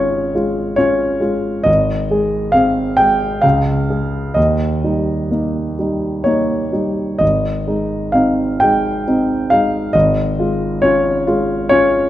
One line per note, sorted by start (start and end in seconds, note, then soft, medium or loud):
0.00 1.63 G#1 soft
0.00 0.35 G#3 soft
0.00 0.32 C#4 soft
0.00 0.35 F4 soft
0.00 0.75 C#5 medium
0.00 1.64 D#5 medium
0.35 0.75 G#3 soft
0.35 0.75 F4 soft
0.76 1.19 C#4 soft
0.76 1.19 F4 soft
0.76 1.66 C#5 medium
1.20 1.62 G#3 soft
1.20 1.62 F4 soft
1.64 3.38 G#1 soft
1.64 2.53 D#5 medium
2.11 2.51 G#3 soft
2.11 2.51 G#4 soft
2.52 2.94 C4 soft
2.52 2.95 G#4 soft
2.52 2.97 F5 medium
2.97 3.40 G#3 soft
2.97 3.40 G#4 soft
2.97 3.42 G5 medium
3.42 4.34 C#2 soft
3.42 4.36 F5 medium
3.90 4.33 G#3 soft
3.90 4.33 G#4 soft
4.34 7.17 D#2 soft
4.34 6.25 D#5 medium
4.84 5.28 G3 soft
4.84 5.28 D#4 soft
5.31 5.75 A#3 soft
5.31 5.75 D#4 soft
5.79 6.22 G3 soft
5.79 6.23 D#4 soft
6.24 6.70 A#3 soft
6.24 6.70 D#4 soft
6.24 7.20 C#5 medium
6.72 7.17 G3 soft
6.72 7.17 D#4 soft
7.19 9.90 G#1 soft
7.19 8.13 D#5 medium
7.67 8.10 G#3 soft
7.67 8.11 D#4 soft
8.12 8.57 C4 soft
8.12 8.57 D#4 soft
8.12 8.60 F5 medium
8.60 9.03 G#3 soft
8.60 9.04 D#4 soft
8.60 9.50 G5 medium
9.07 9.47 C4 soft
9.07 9.47 D#4 soft
9.50 9.91 G#3 soft
9.50 9.91 D#4 soft
9.50 9.94 F5 medium
9.93 12.10 G#1 medium
9.93 10.83 D#5 medium
10.39 10.80 G#3 soft
10.39 10.80 F4 soft
10.82 11.23 C#4 soft
10.82 11.24 F4 soft
10.82 11.68 C#5 medium
11.27 11.67 G#3 soft
11.27 11.67 F4 soft
11.69 12.10 C#4 soft
11.69 12.10 F4 soft
11.69 12.10 C#5 medium